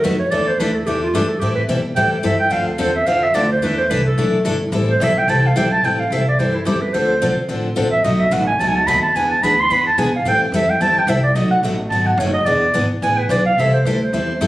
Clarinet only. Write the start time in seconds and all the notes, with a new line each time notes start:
0.05 B4
0.19 C#5
0.31 D5
0.48 C5
0.59 B4
0.75 A4
0.86 G4
1.03 F4
1.16 G4
1.29 A4
1.39 G4
1.55 B4
1.96 G5
2.12 B4
2.24 E5
2.39 G5
2.52 F5
2.69 A4
2.80 C5
2.95 E5
3.07 F5
3.24 E5
3.35 D5
3.51 C5
3.63 B4
3.77 C5
3.90 B4
4.06 A4
4.90 C5
5.03 E5
5.19 G5
5.30 A5
5.47 F5
5.57 G5
5.72 A5
5.85 G5
5.99 F5
6.13 E5
6.28 D5
6.39 C5
6.55 E4
6.66 G4
6.81 B4
6.93 C5
7.92 E5
8.03 D#5
8.20 E5
8.33 F#5
8.47 G#5
8.60 A5
8.68 G#5
8.76 A5
8.87 B5
9.02 A5
9.16 G#5
9.31 A5
9.43 B5
9.60 C6
9.72 B5
9.87 A5
9.99 G#5
10.16 F5
10.28 G5
10.43 B4
10.55 E5
10.70 G5
10.82 A5
10.98 G5
11.09 E5
11.23 D5
11.35 D#5
11.51 F#5
11.90 A5
12.07 F#5
12.19 C#5
12.33 D#5
12.46 D5
13.03 G#5
13.18 B4
13.30 D5
13.46 F5
13.60 E5
13.74 C5
13.86 B4
14.04 C5